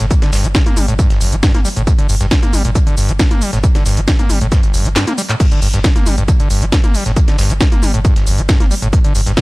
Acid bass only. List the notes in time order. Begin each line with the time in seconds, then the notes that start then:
0.00 A2
0.11 A#2
0.22 D3
0.33 G2
0.44 G3
0.55 G3
0.66 A#3
0.77 G3
0.88 A2
0.99 G2
1.10 G1
1.21 G2
1.32 G3
1.43 G2
1.54 A#3
1.65 G3
1.76 A2
1.87 G2
1.99 D3
2.09 G2
2.21 G2
2.31 G3
2.43 A#3
2.53 G3
2.65 A#2
2.75 D3
2.87 D3
2.97 G2
3.09 G3
3.19 G3
3.31 A#3
3.42 G3
3.53 A2
3.64 A#2
3.75 D3
3.86 G2
3.97 G3
4.08 G3
4.19 A#3
4.30 G3
4.41 A2
4.52 G2
4.63 G1
4.74 G2
4.85 G3
4.96 G2
5.07 A#3
5.18 G3
5.29 A2
5.40 G2
5.52 D3
5.62 G2
5.74 G2
5.84 G3
5.96 A#3
6.06 G3
6.18 G2
6.28 D3
6.40 D3
6.50 G2
6.62 G3
6.72 G3
6.84 A#3
6.94 G3
7.06 A2
7.16 A#2
7.28 D3
7.39 G2
7.50 G3
7.61 G3
7.72 A#3
7.83 G3
7.94 A2
8.05 G2
8.16 G1
8.27 G2
8.38 G3
8.49 G2
8.60 A#3
8.71 G3
8.82 A2
8.93 G2
9.04 D3
9.15 G2
9.26 G2
9.37 G3